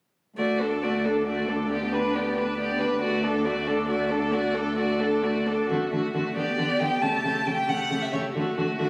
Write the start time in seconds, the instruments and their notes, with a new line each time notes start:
0.37 cello D2, viola A3, violin F#4 D5
0.61 viola D4, violin A4
0.83 viola A3, violin F#4 D5
1.05 viola D4, violin A4
1.27 viola A3, violin F#4 D5
1.48 viola D4, violin A4
1.70 viola B3, violin G4 D5
1.92 viola D4, violin B4
2.13 viola B3, violin G4 D5
2.35 viola D4, violin B4
2.57 viola B3, violin G4 D5
2.79 viola D4, violin B4
3.01 cello D2, viola A3, violin F#4 D5
3.23 viola D4, violin A4
3.45 viola A3, violin F#4 D5
3.67 viola D4, violin A4
3.88 viola A3, violin F#4 D5
4.10 viola D4, violin A4
4.31 viola A3, violin F#4 D5
4.54 viola D4, violin A4
4.76 viola A3, violin F#4 D5
4.99 viola D4, violin A4
5.22 viola A3, violin F#4 D5
5.46 viola D4, violin A4
5.69 cello D3, viola A3, violin F#4
5.92 cello D3, viola A3, violin F#4
6.13 cello D3, viola A3, violin F#4
6.35 cello D3, viola B3, violin G4 D5
6.57 cello D3, viola B3, violin G4
6.80 cello D3, viola B3, violin G4 G5
7.02 cello C#3, viola A3, violin G4 A5
7.24 cello C#3, viola A3, violin G4
7.46 cello C#3, viola A3, violin G4 G5
7.68 cello C#3, viola A3, violin G4 F#5
7.90 cello C#3, viola A3, violin G4
8.02 violin E5
8.11 cello C#3, viola A3, violin G4 C#5
8.34 cello D3, viola A3, violin F#4
8.56 cello D3, viola A3, violin F#4
8.78 cello D3, viola A3, violin F#4